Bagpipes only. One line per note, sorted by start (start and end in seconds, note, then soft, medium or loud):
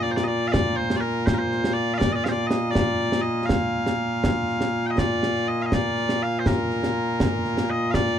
0.00 8.19 A#2 medium
0.00 8.19 A#3 medium
0.00 8.19 F4 medium
0.00 0.11 D5 medium
0.11 0.16 C5 medium
0.16 0.24 D5 medium
0.24 0.28 D#5 medium
0.28 0.47 D5 medium
0.47 0.52 F5 loud
0.52 0.76 D5 loud
0.76 0.96 C5 loud
0.96 1.00 D5 medium
1.00 1.26 A#4 medium
1.26 1.34 C5 medium
1.34 1.38 A#4 medium
1.38 1.73 C5 medium
1.73 1.94 D5 medium
1.94 1.98 F5 loud
1.98 2.13 D5 loud
2.13 2.24 D5 loud
2.13 2.14 D#5 medium
2.24 2.29 F5 medium
2.29 2.31 C5 medium
2.29 2.47 D5 medium
2.47 2.71 D#5 medium
2.71 3.22 D5 loud
3.21 3.45 D#5 medium
3.45 4.86 F5 loud
4.86 4.99 D#5 medium
4.86 4.90 G5 medium
4.99 5.48 D5 medium
5.48 5.62 D#5 medium
5.62 5.74 D#5 medium
5.62 5.65 F5 medium
5.74 6.23 D5 loud
6.23 6.39 F5 loud
6.39 6.47 C5 medium
6.47 7.70 A#4 medium
7.70 7.91 D#5 medium
7.91 8.18 D5 loud
7.91 7.94 F5 loud